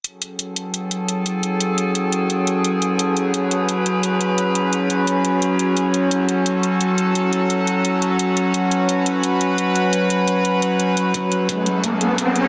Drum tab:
HH |xxxxxxxx|xxxxxxxx|xxxxxxxx|xxxxxxxx|
BD |--------|--------|--------|--------|

HH |xxxxxxxx|xxxxxxxx|xxxxxxxx|xxxxxxxx|
BD |--------|--------|--------|--------|

HH |xxxxxxxx|
BD |o-o-o-o-|